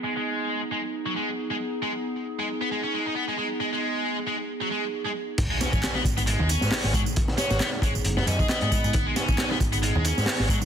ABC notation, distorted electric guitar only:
X:1
M:4/4
L:1/16
Q:"Swing 16ths" 1/4=135
K:G#m
V:1 name="Distorted electric guitar" clef=bass
G, G,4 z G, z2 F, G, z2 G, z2 | G, z4 G, z B, G, C G, D B, G, G, z | G, G,4 z G, z2 F, G, z2 G, z2 | z G, C3 B, z B, G,2 C4 F, z |
z2 C F B, z G, z2 B, C G B, B,3- | B, G, C3 B, z B, G,2 C4 F, z |]